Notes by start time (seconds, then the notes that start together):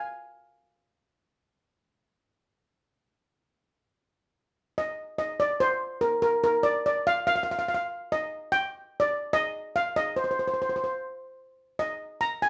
Already playing: F5 G#5
4.78 D#5
5.18 D#5
5.40 D5
5.60 C5
6.01 A#4
6.22 A#4
6.44 A#4
6.63 D5
6.86 D5
7.07 F5
7.27 F5
7.36 F5
7.43 F5
7.51 F5
7.59 F5
7.68 F5
7.74 F5
8.12 D#5
8.52 G5
9.00 D5
9.33 D#5
9.76 F5
9.96 D#5
10.16 C5
10.24 C5
10.31 C5
10.39 C5
10.48 C5
10.54 C5
10.62 C5
10.69 C5
10.76 C5
10.84 C5
11.79 D#5
12.21 A#5
12.42 G#5